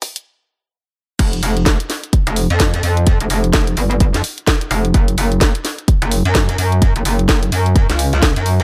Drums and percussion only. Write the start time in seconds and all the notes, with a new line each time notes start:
0.02 kick, open hi-hat
0.16 closed hi-hat
1.19 kick, closed hi-hat, crash
1.33 closed hi-hat
1.43 open hi-hat
1.57 closed hi-hat
1.66 kick, snare, closed hi-hat
1.80 closed hi-hat
1.90 snare, open hi-hat
2.04 closed hi-hat
2.13 kick, closed hi-hat
2.27 closed hi-hat
2.36 open hi-hat
2.50 closed hi-hat
2.60 kick, snare, closed hi-hat
2.74 closed hi-hat
2.83 open hi-hat
2.97 closed hi-hat
3.07 kick, closed hi-hat
3.21 closed hi-hat
3.30 open hi-hat
3.44 closed hi-hat
3.53 kick, snare, closed hi-hat
3.67 closed hi-hat
3.77 open hi-hat
3.91 closed hi-hat
4.00 kick, closed hi-hat
4.14 snare, closed hi-hat
4.24 open hi-hat
4.38 closed hi-hat
4.47 kick, snare, closed hi-hat
4.61 closed hi-hat
4.71 open hi-hat
4.85 closed hi-hat
4.94 kick, closed hi-hat
5.08 closed hi-hat
5.18 open hi-hat
5.32 closed hi-hat
5.41 kick, snare, closed hi-hat
5.55 closed hi-hat
5.65 snare, open hi-hat
5.79 closed hi-hat
5.88 kick, closed hi-hat
6.02 closed hi-hat
6.11 open hi-hat
6.25 closed hi-hat
6.35 kick, snare, closed hi-hat
6.49 closed hi-hat
6.58 open hi-hat
6.72 closed hi-hat
6.82 kick, closed hi-hat
6.96 closed hi-hat
7.05 open hi-hat
7.19 closed hi-hat
7.29 kick, snare, closed hi-hat
7.43 closed hi-hat
7.52 open hi-hat
7.66 closed hi-hat
7.76 kick, closed hi-hat
7.90 snare, closed hi-hat
7.99 open hi-hat
8.13 closed hi-hat
8.22 kick, snare, closed hi-hat
8.36 closed hi-hat
8.46 open hi-hat
8.60 closed hi-hat